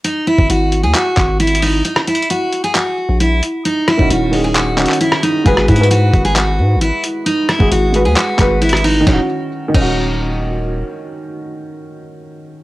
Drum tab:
CC |------------------------------------------------|------------------------------------------------|------------------------------------------------|------------------------------------------------|
HH |x-----------x-----x-----x-----x-----x-x-x-o-----|x-----x-x-x-x-----x--x--x-----------x-----x-----|x-----------x-----o-----x-----x-x-x-x-----x-----|x-----x-x-x-x-----x--x--x-----------x-----x-----|
CP |------------------------x-----x-----------------|------------------------x-----------------------|------------------------x-----x--x--------------|------------------------x-----------------------|
SD |------------------------------------------------|---r--------------------------------------------|------r--------------------------------r--------|---r--------------------------------------------|
BD |---------o--------------------o-----------------|------------------------------------------------|---------o--------------------------------------|o-----o-----------o-----------------------------|

CC |------------------------------------------------|------------------x-----------------------------|------------------------------------------------|
HH |x-----------x-----x-----x-----x-----x-x-x-o-----|------------------------------------------------|------------------------------------------------|
CP |------------------------x-----x-----------------|------------------------------------------------|------------------------------------------------|
SD |------r--------------------------------r--------|o-----------------------------------------------|------------------------------------------------|
BD |---------o--------------------o-----------------|o-----------------o-----------------------------|------------------------------------------------|